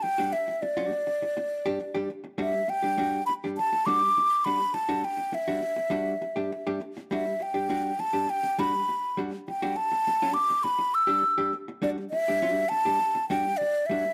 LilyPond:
<<
  \new Staff \with { instrumentName = "Flute" } { \time 4/4 \key d \mixolydian \tempo 4 = 102 g''8 e''8 d''2~ d''8 r8 | e''8 g''4 b''8 a''8 d'''4 b''8 | a''8 g''8 e''2~ e''8 r8 | e''8 g''4 a''8 g''8 b''4 r8 |
g''8 a''4 d'''8 b''8 e'''4 r8 | d''8 e''4 a''4 g''8 d''8 e''8 | }
  \new Staff \with { instrumentName = "Hollow-body jazz guitar" } { \time 4/4 \key d \mixolydian r16 <g d' fis'>16 r8. <g d' fis'>16 r4 r16 <g d' g'>16 r16 <g d' g'>16 r8 | <g d' fis'>16 r8 <g d' g'>16 <g d' fis'>16 r8 <g d' g'>16 r8 <g d' fis'>16 r8. <g d' fis'>16 r16 | r16 <g d' fis'>16 r8. <g d' fis'>16 r8 <g d' fis'>16 r8 <g d' g'>16 r16 <g d' g'>16 r8 | <g d' fis'>16 r8 <g d' g'>16 <g d' fis'>16 r8 <g d' g'>16 r8 <g d' fis'>16 r8. <g d' fis'>16 r16 |
r16 <g d' fis'>16 r8. <g d' fis'>16 r4 r16 <g d' g'>16 r16 <g d' g'>16 r8 | <g d' fis'>16 r8 <g d' g'>16 <g d' fis'>16 r8 <g d' g'>16 r8 <g d' fis'>16 r8. <g d' fis'>16 r16 | }
>>